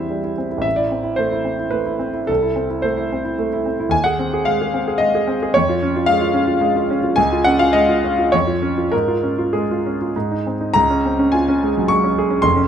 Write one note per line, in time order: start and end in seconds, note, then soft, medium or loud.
0.00 0.62 E2 soft
0.00 0.11 G3 soft
0.00 0.38 C4 soft
0.00 0.24 E4 soft
0.00 0.67 C5 medium
0.00 0.37 E5 medium
0.11 0.32 G3 soft
0.24 0.46 E4 soft
0.38 0.60 C4 soft
0.51 0.65 E4 soft
0.58 2.21 A1 soft
0.58 0.77 E5 medium
0.76 1.00 E4 soft
0.76 1.18 D5 medium
0.92 1.14 C4 soft
1.03 1.27 E4 soft
1.16 1.41 A3 soft
1.16 1.73 C5 medium
1.32 1.55 E4 soft
1.45 1.68 C4 soft
1.59 1.82 E4 soft
1.71 1.95 A3 soft
1.71 2.27 B4 medium
1.86 2.09 E4 soft
1.99 2.22 C4 soft
2.13 2.28 E4 soft
2.27 3.88 C2 soft
2.27 2.84 A4 medium
2.42 2.65 E4 soft
2.56 2.78 C4 soft
2.70 2.92 E4 soft
2.82 3.06 A3 soft
2.82 3.64 C5 medium
2.97 3.19 E4 soft
3.13 3.34 C4 soft
3.25 3.47 E4 soft
3.39 3.60 A3 soft
3.53 3.74 E4 soft
3.66 3.87 C4 soft
3.80 3.92 E4 soft
3.89 5.49 D#2 medium
3.89 4.04 G#5 medium
4.04 4.27 G#4 soft
4.04 4.45 F#5 medium
4.19 4.40 C4 medium
4.34 4.54 G#4 medium
4.45 4.68 G#3 soft
4.45 5.00 F5 medium
4.61 4.82 G#4 medium
4.74 4.95 C4 soft
4.88 5.09 G#4 soft
4.98 5.22 G#3 soft
4.98 5.54 D#5 medium
5.15 5.36 G#4 medium
5.27 5.49 C4 medium
5.43 5.55 G#4 medium
5.54 7.15 F2 medium
5.54 6.08 C#5 medium
5.69 5.90 F4 medium
5.82 6.04 C#4 medium
5.96 6.17 F4 medium
6.06 6.30 G#3 medium
6.06 6.89 F5 loud
6.22 6.43 F4 medium
6.34 6.56 C#4 medium
6.47 6.70 F4 medium
6.61 6.84 G#3 medium
6.76 6.98 F4 medium
6.90 7.12 C#4 medium
7.03 7.18 F4 medium
7.16 8.29 C#2 medium
7.16 7.45 G#5 loud
7.32 7.54 F4 medium
7.44 7.69 C#4 medium
7.44 7.59 F#5 loud
7.59 7.83 F4 soft
7.59 7.74 F5 medium
7.73 7.98 G#3 medium
7.73 8.32 D#5 medium
7.89 8.12 F4 medium
8.04 8.27 C#4 soft
8.19 8.33 F4 soft
8.32 8.91 F2 medium
8.32 8.92 C#5 medium
8.47 8.71 F4 soft
8.62 8.86 C#4 soft
8.78 8.92 F4 soft
8.92 10.11 G#2 medium
8.92 9.53 A#4 medium
9.08 9.32 F4 soft
9.23 9.47 C#4 soft
9.38 9.63 F4 soft
9.53 9.78 G#3 soft
9.53 10.45 G#4 medium
9.71 9.95 F4 soft
9.86 10.10 C#4 soft
10.02 10.16 F4 soft
10.16 10.74 G#2 medium
10.31 10.55 D#4 soft
10.47 10.70 C4 soft
10.61 10.75 D#4 soft
10.74 12.41 C#2 medium
10.74 11.33 A#5 loud
10.90 11.13 C#4 medium
11.05 11.19 C4 soft
11.19 11.42 C#4 medium
11.32 11.57 F4 medium
11.32 11.89 G#5 medium
11.48 11.71 C#4 medium
11.63 11.85 G#3 soft
11.78 11.91 F#3 soft
11.88 12.12 G#3 medium
11.88 12.43 C#6 loud
12.04 12.25 C#4 medium
12.18 12.39 G#4 medium
12.30 12.44 C#4 medium
12.42 12.68 F1 medium
12.42 12.68 F2 medium
12.42 12.68 C6 loud
12.56 12.68 C#4 medium